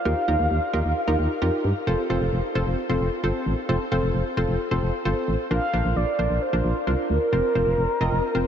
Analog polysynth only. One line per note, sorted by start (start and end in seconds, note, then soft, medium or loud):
0.05 0.21 D#4 medium
0.05 0.21 F4 medium
0.05 0.21 G4 medium
0.05 0.21 A#4 medium
0.28 0.59 D#4 medium
0.28 0.59 F4 medium
0.28 0.59 G4 medium
0.28 0.59 A#4 medium
0.73 0.97 D#4 medium
0.73 0.97 F4 medium
0.73 0.97 G4 medium
0.73 0.97 A#4 loud
1.08 1.31 D#4 medium
1.08 1.31 F4 medium
1.08 1.31 G4 medium
1.08 1.31 A#4 loud
1.42 1.73 D#4 medium
1.42 1.73 F4 medium
1.42 1.73 G4 medium
1.42 1.73 A#4 loud
1.87 2.03 C4 medium
1.87 2.03 F4 medium
1.87 2.03 A4 medium
1.87 2.03 C5 loud
2.10 2.41 C4 medium
2.10 2.41 F4 medium
2.10 2.41 A4 medium
2.10 2.41 C5 loud
2.55 2.79 C4 medium
2.55 2.79 F4 medium
2.55 2.79 A4 medium
2.55 2.79 C5 loud
2.89 3.13 C4 medium
2.89 3.13 F4 medium
2.89 3.13 A4 medium
2.89 3.13 C5 loud
3.24 3.55 C4 medium
3.24 3.55 F4 medium
3.24 3.55 A4 medium
3.24 3.55 C5 loud
3.69 3.85 C4 medium
3.69 3.85 F4 medium
3.69 3.85 A4 medium
3.69 3.85 C5 loud
3.92 4.23 C4 medium
3.92 4.23 F4 medium
3.92 4.23 A4 medium
3.92 4.23 C5 loud
4.37 4.61 C4 medium
4.37 4.61 F4 medium
4.37 4.61 A4 medium
4.37 4.61 C5 loud
4.71 4.95 C4 medium
4.71 4.95 F4 medium
4.71 4.95 A4 medium
4.71 4.95 C5 loud
5.05 5.37 C4 medium
5.05 5.37 F4 medium
5.05 5.37 A4 medium
5.05 5.37 C5 loud
5.51 5.66 D4 medium
5.51 5.66 F4 medium
5.51 5.66 A#4 medium
5.51 5.66 C5 medium
5.73 6.05 D4 medium
5.73 6.05 F4 medium
5.73 6.05 A#4 medium
5.73 6.05 C5 medium
6.19 6.42 D4 medium
6.19 6.42 F4 medium
6.19 6.42 A#4 medium
6.19 6.42 C5 medium
6.53 6.76 D4 medium
6.53 6.76 F4 medium
6.53 6.76 A#4 medium
6.53 6.76 C5 medium
6.87 7.18 D4 medium
6.87 7.18 F4 medium
6.87 7.18 A#4 medium
6.87 7.18 C5 medium
7.33 7.48 C4 medium
7.33 7.48 F4 medium
7.33 7.48 A#4 medium
7.33 7.48 C5 medium
7.55 7.87 C4 medium
7.55 7.87 F4 medium
7.55 7.87 A#4 medium
7.55 7.87 C5 medium
8.01 8.24 C4 medium
8.01 8.24 F4 medium
8.01 8.24 A#4 medium
8.01 8.24 D#5 loud
8.35 8.47 C4 medium
8.35 8.47 F4 medium
8.35 8.47 A#4 medium
8.35 8.47 C5 loud